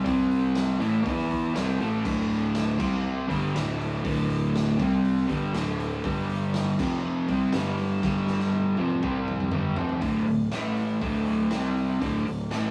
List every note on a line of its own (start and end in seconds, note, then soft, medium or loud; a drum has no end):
0.04 0.76 C2 medium
0.04 0.79 C3 loud
0.04 0.79 G3 loud
0.04 0.80 C4 loud
0.04 kick loud
0.04 open hi-hat medium
0.31 open hi-hat medium
0.55 snare loud
0.55 open hi-hat medium
0.80 1.03 A1 medium
0.80 1.04 A2 medium
0.80 1.03 E3 medium
0.80 1.05 A3 medium
0.80 open hi-hat medium
1.04 1.52 E2 loud
1.04 1.54 E3 medium
1.04 1.54 B3 medium
1.04 1.54 E4 medium
1.04 kick loud
1.04 open hi-hat medium
1.19 snare soft
1.31 kick medium
1.31 open hi-hat medium
1.54 1.79 C2 loud
1.54 1.78 C3 medium
1.54 1.79 G3 medium
1.54 1.79 C4 loud
1.54 snare loud
1.54 open hi-hat medium
1.79 2.03 A1 medium
1.79 2.03 A2 medium
1.79 2.04 E3 medium
1.79 2.05 A3 loud
1.79 open hi-hat medium
2.04 2.76 D1 medium
2.04 2.78 D2 loud
2.04 2.79 A2 loud
2.04 2.79 D3 loud
2.04 kick loud
2.04 crash loud
2.30 open hi-hat medium
2.55 snare loud
2.55 open hi-hat medium
2.78 3.26 C2 medium
2.78 3.28 C3 medium
2.78 3.28 G3 medium
2.78 3.29 C4 medium
2.78 kick loud
2.78 crash loud
3.28 3.53 G1 medium
3.28 3.53 G2 medium
3.28 3.53 D3 medium
3.28 3.54 G3 loud
3.28 kick medium
3.28 open hi-hat medium
3.54 4.01 D1 medium
3.54 4.02 D2 medium
3.54 4.03 A2 medium
3.54 4.04 D3 medium
3.54 snare loud
3.54 open hi-hat medium
3.81 open hi-hat medium
4.03 4.76 D1 medium
4.03 4.78 D2 loud
4.03 4.78 A2 loud
4.03 4.79 D3 loud
4.03 kick loud
4.03 open hi-hat medium
4.30 open hi-hat medium
4.56 snare loud
4.56 open hi-hat medium
4.78 5.26 C2 medium
4.78 5.28 C3 medium
4.78 5.28 G3 medium
4.78 5.29 C4 medium
4.78 kick loud
4.78 open hi-hat medium
5.05 open hi-hat medium
5.17 snare soft
5.28 5.52 G1 medium
5.28 5.53 G2 medium
5.28 5.53 D3 medium
5.28 5.53 G3 loud
5.28 kick medium
5.28 open hi-hat medium
5.53 6.00 D1 loud
5.53 6.03 D2 medium
5.53 6.03 A2 medium
5.53 6.03 D3 loud
5.53 snare loud
5.53 open hi-hat medium
5.80 open hi-hat medium
6.03 6.75 G1 loud
6.03 6.78 G2 loud
6.03 6.78 D3 loud
6.03 6.78 G3 loud
6.03 kick loud
6.03 open hi-hat medium
6.29 open hi-hat medium
6.54 snare loud
6.54 open hi-hat medium
6.79 7.25 F1 medium
6.79 7.28 F2 medium
6.79 7.27 C3 loud
6.79 7.29 F3 medium
6.79 kick loud
6.79 crash loud
7.28 7.52 C2 medium
7.28 7.52 C3 medium
7.28 7.53 G3 medium
7.28 7.53 C4 loud
7.28 kick medium
7.28 open hi-hat medium
7.53 8.00 G1 loud
7.53 8.02 G2 medium
7.53 8.02 D3 medium
7.53 8.03 G3 loud
7.53 snare loud
7.53 open hi-hat medium
7.78 open hi-hat medium
8.02 8.74 G1 medium
8.02 8.77 G2 medium
8.02 8.77 D3 loud
8.02 8.78 G3 loud
8.02 kick loud
8.02 snare medium
8.27 snare medium
8.40 snare medium
8.53 high tom medium
8.77 9.01 F1 loud
8.77 9.01 F2 medium
8.77 9.01 C3 medium
8.77 9.02 F3 medium
8.77 high tom medium
8.90 mid tom medium
9.03 9.49 C2 medium
9.03 9.51 C3 medium
9.03 9.52 G3 medium
9.03 9.52 C4 medium
9.03 kick loud
9.03 mid tom medium
9.28 mid tom medium
9.40 mid tom medium
9.51 9.75 G1 loud
9.51 9.76 G2 medium
9.51 9.76 D3 medium
9.51 9.77 G3 loud
9.51 mid tom medium
9.76 9.99 F1 medium
9.76 10.00 F2 medium
9.76 10.01 C3 medium
9.76 10.01 F3 loud
9.76 floor tom loud
9.89 floor tom medium
10.00 10.25 D1 medium
10.00 10.25 D2 medium
10.00 10.26 A2 medium
10.00 10.26 D3 loud
10.00 kick loud
10.00 open hi-hat medium
10.26 10.50 D1 medium
10.26 10.46 D2 medium
10.26 10.47 A2 medium
10.26 open hi-hat medium
10.51 10.98 A1 medium
10.51 11.00 A2 medium
10.51 11.01 E3 medium
10.51 11.01 A3 loud
10.51 snare loud
10.51 open hi-hat medium
10.77 open hi-hat medium
11.01 11.48 D1 medium
11.01 11.50 D2 medium
11.01 11.51 A2 medium
11.01 11.51 D3 medium
11.01 kick loud
11.01 open hi-hat medium
11.26 open hi-hat medium
11.51 11.97 C2 loud
11.51 12.00 C3 medium
11.51 12.00 G3 medium
11.51 12.01 C4 loud
11.51 snare loud
11.51 open hi-hat medium
11.77 open hi-hat medium
12.00 12.24 D1 medium
12.00 12.25 D2 medium
12.00 12.25 A2 loud
12.00 12.25 D3 loud
12.00 kick loud
12.00 open hi-hat medium
12.26 12.49 D1 medium
12.26 12.46 D2 medium
12.26 12.46 A2 medium
12.26 open hi-hat medium
12.51 12.71 A1 medium
12.51 12.71 A2 medium
12.51 12.71 E3 medium
12.51 12.71 A3 medium
12.51 snare loud
12.51 open hi-hat medium